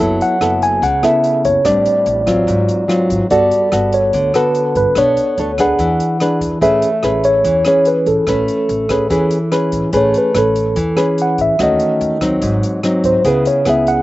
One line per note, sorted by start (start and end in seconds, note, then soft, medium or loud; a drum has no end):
0.00 0.19 F#1 medium
0.00 0.80 F#3 medium
0.00 0.38 B3 medium
0.00 0.38 E4 medium
0.00 0.38 A4 medium
0.00 kick medium
0.21 0.64 F#5 medium
0.21 closed hi-hat soft
0.41 0.80 F#1 medium
0.41 0.82 B3 medium
0.41 0.82 E4 soft
0.41 0.83 A4 medium
0.41 cross-stick medium
0.41 closed hi-hat soft
0.62 0.84 G#5 medium
0.62 closed hi-hat soft
0.82 1.02 C#2 medium
0.82 1.63 C#3 medium
0.82 1.04 F#5 medium
0.82 kick medium
0.82 closed hi-hat soft
1.03 1.62 B3 medium
1.03 1.62 E4 medium
1.03 1.62 A4 medium
1.03 1.46 E5 medium
1.03 cross-stick medium
1.03 closed hi-hat soft
1.24 closed hi-hat soft
1.45 1.54 F#1 medium
1.45 1.64 C#5 medium
1.45 kick soft
1.45 closed hi-hat soft
1.65 1.85 A1 medium
1.65 2.46 A2 medium
1.65 2.24 G3 soft
1.65 2.24 C4 soft
1.65 2.24 D4 medium
1.65 3.06 D5 medium
1.65 kick medium
1.65 cross-stick medium
1.65 closed hi-hat medium
1.85 closed hi-hat soft
2.06 2.45 A1 medium
2.06 closed hi-hat soft
2.26 2.86 F#3 medium
2.26 2.86 C4 medium
2.26 2.86 F4 medium
2.26 kick medium
2.26 cross-stick medium
2.26 closed hi-hat soft
2.47 2.67 G#1 medium
2.47 3.28 G#2 medium
2.47 kick medium
2.47 closed hi-hat medium
2.68 closed hi-hat soft
2.88 3.29 F#3 medium
2.88 3.29 C4 soft
2.88 3.29 F4 medium
2.88 cross-stick medium
2.88 closed hi-hat soft
3.10 3.20 G#1 medium
3.10 kick medium
3.10 closed hi-hat soft
3.30 3.50 G1 medium
3.30 4.11 G3 medium
3.30 3.69 B3 medium
3.30 3.69 F#4 medium
3.30 3.69 A4 medium
3.30 3.95 D5 medium
3.30 kick medium
3.30 closed hi-hat medium
3.51 closed hi-hat soft
3.72 4.11 G1 medium
3.72 4.31 B3 medium
3.72 4.31 F#4 medium
3.72 4.31 A4 medium
3.72 cross-stick medium
3.72 closed hi-hat soft
3.92 4.32 C#5 medium
3.92 closed hi-hat soft
4.13 4.33 D2 medium
4.13 4.94 D3 medium
4.13 kick medium
4.13 closed hi-hat medium
4.34 4.93 B3 medium
4.34 4.94 F#4 medium
4.34 4.94 A4 medium
4.34 4.76 B4 medium
4.34 cross-stick medium
4.34 closed hi-hat soft
4.55 closed hi-hat soft
4.75 4.85 G1 medium
4.75 4.98 B4 medium
4.75 kick soft
4.75 closed hi-hat soft
4.95 5.15 B1 medium
4.95 5.78 B3 medium
4.95 5.35 D4 medium
4.95 5.35 A4 medium
4.95 5.61 C#5 medium
4.95 5.35 C#5 medium
4.95 kick medium
4.95 cross-stick medium
4.95 closed hi-hat medium
5.17 closed hi-hat soft
5.38 5.76 D2 medium
5.38 5.50 D4 medium
5.38 5.51 A4 medium
5.38 5.51 C#5 medium
5.38 closed hi-hat soft
5.58 6.18 D4 medium
5.58 6.18 G#4 medium
5.58 6.18 B4 medium
5.58 6.38 F#5 medium
5.58 kick medium
5.58 cross-stick medium
5.58 closed hi-hat soft
5.79 5.98 E2 medium
5.79 6.60 E3 soft
5.79 kick medium
5.79 closed hi-hat medium
6.00 closed hi-hat soft
6.20 6.61 D4 soft
6.20 6.61 G#4 medium
6.20 6.61 B4 medium
6.20 cross-stick medium
6.20 closed hi-hat soft
6.41 6.51 E2 medium
6.41 kick medium
6.41 closed hi-hat soft
6.61 6.81 A1 medium
6.61 7.42 A3 medium
6.61 6.89 C#4 medium
6.61 6.89 G#4 medium
6.61 6.89 B4 medium
6.61 7.26 E5 medium
6.61 kick medium
6.61 closed hi-hat medium
6.82 closed hi-hat soft
7.03 7.42 A1 medium
7.03 7.62 C#4 medium
7.03 7.63 G#4 medium
7.03 7.63 B4 medium
7.03 cross-stick medium
7.03 closed hi-hat soft
7.24 7.63 C#5 medium
7.24 closed hi-hat soft
7.44 7.64 E2 medium
7.44 8.26 E3 soft
7.44 kick medium
7.44 closed hi-hat medium
7.65 8.25 C#4 medium
7.65 8.25 G#4 medium
7.65 8.25 B4 medium
7.65 7.88 C#5 medium
7.65 cross-stick medium
7.65 closed hi-hat soft
7.85 8.08 B4 medium
7.85 closed hi-hat soft
8.06 8.16 A1 medium
8.06 9.48 A4 medium
8.06 kick medium
8.06 closed hi-hat soft
8.27 8.47 A1 medium
8.27 9.09 A3 medium
8.27 8.87 C#4 medium
8.27 8.87 B4 medium
8.27 kick medium
8.27 cross-stick medium
8.27 closed hi-hat soft
8.48 closed hi-hat soft
8.69 9.08 A1 medium
8.69 closed hi-hat soft
8.89 9.07 C#4 medium
8.89 9.08 G#4 medium
8.89 9.08 B4 medium
8.89 kick medium
8.89 cross-stick medium
8.89 closed hi-hat soft
9.10 9.30 E2 medium
9.10 9.91 E3 medium
9.10 9.37 C#4 soft
9.10 9.37 G#4 medium
9.10 9.38 B4 medium
9.10 kick medium
9.10 closed hi-hat soft
9.31 closed hi-hat soft
9.52 9.90 C#4 medium
9.52 9.90 G#4 medium
9.52 9.90 B4 medium
9.52 cross-stick medium
9.52 closed hi-hat soft
9.72 9.82 A1 medium
9.72 kick medium
9.72 closed hi-hat soft
9.93 10.13 A1 medium
9.93 10.74 A3 medium
9.93 10.31 C#4 medium
9.93 10.32 G#4 medium
9.93 10.32 B4 medium
9.93 kick medium
9.93 closed hi-hat medium
9.97 10.16 C#5 medium
10.14 closed hi-hat soft
10.18 10.36 B4 medium
10.34 10.73 A1 medium
10.34 10.76 C#4 medium
10.34 10.95 A4 medium
10.34 10.77 B4 medium
10.34 cross-stick medium
10.34 closed hi-hat soft
10.56 closed hi-hat soft
10.76 10.96 E2 medium
10.76 11.57 E3 medium
10.76 kick medium
10.76 closed hi-hat medium
10.97 11.56 C#4 medium
10.97 11.56 G#4 medium
10.97 11.56 B4 medium
10.97 cross-stick medium
10.97 closed hi-hat soft
11.18 11.40 F#5 medium
11.18 closed hi-hat soft
11.38 11.48 A1 medium
11.38 11.60 E5 medium
11.38 kick soft
11.38 closed hi-hat soft
11.59 11.78 D#2 medium
11.59 12.40 D#3 medium
11.59 12.18 A3 medium
11.59 12.18 C#4 medium
11.59 12.19 F#4 medium
11.59 12.19 D#5 medium
11.59 kick medium
11.59 cross-stick medium
11.59 closed hi-hat medium
11.80 closed hi-hat soft
12.01 12.39 D#2 medium
12.01 closed hi-hat soft
12.21 12.80 F#3 medium
12.21 12.81 C4 medium
12.21 12.81 D#4 medium
12.21 kick medium
12.21 cross-stick medium
12.21 closed hi-hat soft
12.42 12.61 G#1 medium
12.42 13.23 G#2 medium
12.42 kick medium
12.42 closed hi-hat medium
12.63 closed hi-hat soft
12.83 13.22 F#3 medium
12.83 13.22 C4 medium
12.83 13.22 D#4 medium
12.83 cross-stick medium
12.83 closed hi-hat soft
13.04 13.14 G#1 medium
13.04 13.25 C5 medium
13.04 kick medium
13.04 closed hi-hat soft
13.24 13.44 C#2 medium
13.24 14.02 C#3 medium
13.24 13.63 B3 medium
13.24 13.63 E4 medium
13.24 13.63 G#4 medium
13.24 13.47 B4 medium
13.24 kick medium
13.24 closed hi-hat medium
13.45 13.67 C#5 medium
13.45 closed hi-hat soft
13.65 14.02 C#2 medium
13.65 14.02 B3 medium
13.65 14.02 E4 medium
13.65 14.02 G#4 medium
13.65 cross-stick medium
13.65 closed hi-hat soft
13.70 13.88 E5 medium
13.87 14.02 F#5 medium
13.87 closed hi-hat soft